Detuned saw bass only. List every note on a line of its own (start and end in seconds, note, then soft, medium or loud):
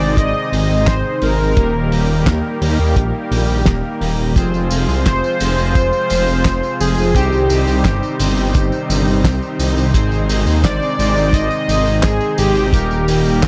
0.00 0.16 G#1 medium
0.17 0.33 G#1 loud
0.52 0.68 G#1 loud
0.70 0.86 G#1 medium
0.87 1.03 G#1 loud
1.22 1.38 G#1 loud
1.40 1.55 G#1 medium
1.57 1.73 D#1 loud
1.74 1.90 D#1 medium
1.92 2.08 D#1 medium
2.09 2.25 D#1 medium
2.26 2.42 D#2 loud
2.61 2.77 D#2 loud
2.79 2.95 D#2 medium
2.96 3.12 A#1 loud
3.31 3.47 A#1 medium
3.49 3.64 A#1 medium
3.67 3.82 D#1 loud
4.01 4.17 D#1 loud
4.19 4.34 D#1 medium
4.36 4.52 F1 loud
4.54 4.69 F1 medium
4.71 4.87 F1 medium
4.89 5.04 C2 medium
5.06 5.22 F1 loud
5.41 5.57 F1 loud
5.58 5.74 F1 medium
5.75 5.91 F1 loud
6.11 6.26 F1 medium
6.28 6.44 F1 medium
6.45 6.61 F1 loud
6.80 6.96 F1 loud
6.98 7.14 F1 medium
7.15 7.31 C2 loud
7.33 7.48 C2 medium
7.50 7.66 C2 medium
7.68 7.83 C2 medium
7.85 8.01 G1 loud
8.20 8.36 G1 loud
8.37 8.53 G1 medium
8.55 8.71 G1 loud
8.89 9.05 G1 loud
9.07 9.23 G1 medium
9.24 9.40 C2 loud
9.59 9.75 C2 medium
9.76 9.92 C2 medium
9.94 10.10 G#1 loud
10.12 10.27 G#1 medium
10.29 10.45 G#1 medium
10.46 10.62 D#2 medium
10.64 10.80 G#1 loud
10.99 11.15 G#1 loud
11.16 11.32 G#1 medium
11.33 11.49 G#1 loud
11.68 11.84 G#1 loud
11.86 12.02 G#1 medium
12.04 12.19 G#1 loud
12.38 12.54 G#1 loud
12.55 12.71 G#1 medium
12.73 12.89 D#1 loud
12.90 13.06 D#1 medium
13.08 13.24 D#1 medium
13.25 13.41 D#1 medium
13.43 13.48 D#2 loud